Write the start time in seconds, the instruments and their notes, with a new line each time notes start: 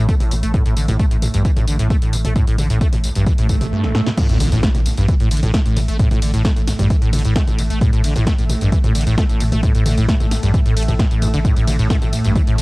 Already playing: synth drone A2 A3
0.08 acid bass A3, kick, closed hi-hat, tambourine
0.20 sub bass A1, acid bass A2, closed hi-hat, mid tom, tambourine
0.31 sub bass A1, acid bass C3, open hi-hat, tambourine
0.43 sub bass A1, acid bass A3, closed hi-hat, tambourine
0.54 acid bass A2, kick, closed hi-hat, mid tom, tambourine
0.66 sub bass A1, acid bass A2, closed hi-hat, tambourine
0.77 sub bass A1, acid bass D3, open hi-hat, tambourine
0.88 sub bass A1, acid bass A2, closed hi-hat, mid tom, tambourine
0.99 acid bass A3, kick, closed hi-hat, tambourine
1.11 sub bass A1, acid bass A2, closed hi-hat, tambourine
1.22 acid bass A1, open hi-hat, mid tom, tambourine
1.34 sub bass A1, acid bass G2, closed hi-hat, tambourine
1.45 acid bass E3, kick, closed hi-hat, tambourine
1.57 sub bass A1, acid bass A2, closed hi-hat, mid tom, tambourine
1.68 sub bass A1, acid bass D3, open hi-hat, tambourine
1.79 sub bass A1, acid bass A2, closed hi-hat, tambourine
1.90 acid bass A3, kick, closed hi-hat, mid tom, tambourine
2.02 sub bass A1, acid bass A2, closed hi-hat, tambourine
2.13 sub bass A1, acid bass C3, open hi-hat, tambourine
2.25 sub bass A1, acid bass A3, closed hi-hat, mid tom, tambourine
2.36 acid bass A2, kick, closed hi-hat, tambourine
2.47 sub bass A1, acid bass A2, closed hi-hat, tambourine
2.58 sub bass A1, acid bass D3, open hi-hat, mid tom, tambourine
2.70 sub bass A1, acid bass A2, closed hi-hat, tambourine
2.81 acid bass A3, kick, closed hi-hat, tambourine
2.93 sub bass A1, acid bass A2, closed hi-hat, mid tom, tambourine
3.04 acid bass A1, open hi-hat, tambourine
3.16 sub bass A1, acid bass G2, closed hi-hat, tambourine
3.27 acid bass E3, kick, closed hi-hat, mid tom, tambourine, swell
3.38 sub bass A1, acid bass A2, closed hi-hat, tambourine
3.49 sub bass A1, acid bass A2, kick, open hi-hat, tambourine
3.61 sub bass A1, acid bass C3, closed hi-hat, mid tom, tambourine
3.72 acid bass G2
3.84 acid bass A1, snare
3.95 acid bass A2, snare
4.06 acid bass B2, snare
4.18 synth drone A2 A3, acid bass A2, kick, closed hi-hat, crash, tambourine, impact
4.29 sub bass A1, acid bass A2, closed hi-hat, tambourine
4.40 sub bass A1, acid bass D3, open hi-hat, mid tom, ride, tambourine
4.52 sub bass A1, acid bass A2, closed hi-hat, tambourine
4.63 acid bass A3, kick, snare, closed hi-hat, tambourine
4.75 sub bass A1, acid bass A2, closed hi-hat, mid tom, tambourine
4.86 acid bass A1, open hi-hat, ride, tambourine
4.97 sub bass A1, acid bass G2, closed hi-hat, tambourine
5.08 acid bass E3, kick, closed hi-hat, mid tom, tambourine
5.20 sub bass A1, acid bass A2, closed hi-hat
5.31 sub bass A1, acid bass D3, open hi-hat, ride, tambourine
5.37 closed hi-hat
5.43 sub bass A1, acid bass A2, closed hi-hat, mid tom, tambourine
5.54 acid bass A3, kick, snare, closed hi-hat, tambourine
5.66 sub bass A1, acid bass A2, closed hi-hat, tambourine
5.77 sub bass A1, acid bass C3, open hi-hat, mid tom, ride, tambourine
5.88 sub bass A1, acid bass A3, closed hi-hat, tambourine
5.99 acid bass A2, kick, closed hi-hat, tambourine
6.11 sub bass A1, acid bass A2, closed hi-hat, mid tom, tambourine
6.22 sub bass A1, acid bass D3, open hi-hat, ride, tambourine
6.34 sub bass A1, acid bass A2, closed hi-hat, tambourine
6.45 acid bass A3, kick, snare, closed hi-hat, mid tom, tambourine
6.57 sub bass A1, acid bass A2, closed hi-hat, tambourine
6.68 acid bass A1, snare, open hi-hat, ride, tambourine
6.79 sub bass A1, acid bass G2, closed hi-hat, mid tom, tambourine
6.90 acid bass E3, kick, closed hi-hat, tambourine
7.02 sub bass A1, acid bass A2, closed hi-hat
7.13 sub bass A1, acid bass D3, open hi-hat, mid tom, ride, tambourine
7.19 closed hi-hat
7.25 sub bass A1, acid bass A2, closed hi-hat, tambourine
7.36 acid bass A3, kick, snare, closed hi-hat, tambourine
7.47 sub bass A1, acid bass A2, closed hi-hat, mid tom, tambourine
7.58 sub bass A1, acid bass C3, open hi-hat, ride, tambourine
7.70 sub bass A1, acid bass A3, closed hi-hat, tambourine
7.81 acid bass A2, kick, closed hi-hat, mid tom, tambourine
7.93 sub bass A1, acid bass A2, closed hi-hat, tambourine
8.04 sub bass A1, acid bass D3, open hi-hat, ride, tambourine
8.16 sub bass A1, acid bass A2, closed hi-hat, mid tom, tambourine
8.27 acid bass A3, kick, snare, closed hi-hat, tambourine
8.38 sub bass A1, acid bass A2, closed hi-hat, tambourine
8.49 acid bass A1, open hi-hat, mid tom, ride, tambourine
8.61 sub bass A1, acid bass G2, closed hi-hat, tambourine
8.72 acid bass E3, kick, closed hi-hat, tambourine
8.84 sub bass A1, acid bass A2, closed hi-hat, mid tom
8.95 sub bass A1, acid bass D3, open hi-hat, ride, tambourine
9.01 closed hi-hat
9.06 sub bass A1, acid bass A2, closed hi-hat, tambourine
9.18 acid bass A3, kick, snare, closed hi-hat, mid tom, tambourine
9.29 sub bass A1, acid bass A2, closed hi-hat, tambourine
9.40 sub bass A1, acid bass C3, open hi-hat, ride, tambourine
9.52 sub bass A1, acid bass A3, closed hi-hat, mid tom, tambourine
9.63 acid bass A2, kick, closed hi-hat, tambourine
9.75 sub bass A1, acid bass A2, closed hi-hat, tambourine
9.86 sub bass A1, acid bass D3, open hi-hat, mid tom, ride, tambourine
9.97 sub bass A1, acid bass A2, closed hi-hat, tambourine
10.08 acid bass A3, kick, snare, closed hi-hat, tambourine
10.20 sub bass A1, acid bass A2, closed hi-hat, mid tom, tambourine
10.31 acid bass A1, snare, open hi-hat, ride, tambourine
10.43 sub bass A1, acid bass G2, closed hi-hat, tambourine
10.54 acid bass E3, kick, closed hi-hat, mid tom, tambourine
10.66 sub bass A1, acid bass A2, closed hi-hat
10.77 sub bass A1, acid bass A3, open hi-hat, ride, tambourine
10.83 closed hi-hat
10.88 sub bass A1, acid bass A2, closed hi-hat, mid tom, tambourine
10.99 acid bass A2, kick, snare, closed hi-hat, tambourine
11.11 sub bass A1, acid bass A2, closed hi-hat, tambourine
11.22 sub bass A1, acid bass G2, open hi-hat, mid tom, ride, tambourine
11.34 sub bass A1, acid bass D3, closed hi-hat, tambourine
11.45 acid bass A2, kick, closed hi-hat, tambourine
11.57 sub bass A1, acid bass A2, closed hi-hat, tambourine
11.68 sub bass A1, acid bass D3, open hi-hat, mid tom, ride, tambourine
11.79 sub bass A1, acid bass A2, closed hi-hat, tambourine
11.90 acid bass A3, kick, snare, closed hi-hat, tambourine
12.02 sub bass A1, acid bass A2, closed hi-hat, mid tom, tambourine
12.13 acid bass A1, open hi-hat, ride, tambourine
12.25 sub bass A1, acid bass G2, closed hi-hat, tambourine
12.36 acid bass E3, kick, closed hi-hat, mid tom, tambourine
12.47 sub bass A1, acid bass A2, closed hi-hat
12.58 sub bass A1, acid bass D3, open hi-hat, ride, tambourine